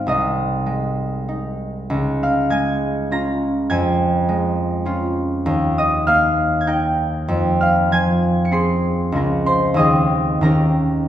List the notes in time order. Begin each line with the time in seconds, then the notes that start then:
Already playing: G#3 C4 D#4 C5 C6 F6
0.07 C2 D#5 D#6
0.66 G#3
1.29 D#4
1.90 C#2
2.23 F5 F6
2.50 G#3 G#5 G#6
3.11 C#4 F4 A#5 A#6
3.70 F2 G#5 G#6
4.29 G#3
4.85 C#4 F4
5.46 D#2
5.78 D#5 D#6
6.07 A#3 F5 F6
6.61 G#6
6.67 D#4 A#4 G5 G6
7.28 F2
7.61 F5 F6
7.92 F3 G#5 G#6
8.45 C#7
8.51 C4 G#4 C6 C7
9.12 C#2 F3 A#4
9.16 C#4
9.46 C5 C6
9.74 D#2 D#3 C4 G#4 D#6
9.79 C4 D#5
10.41 D#2 D#3 C#4 G4 A#4 A#5
10.45 G4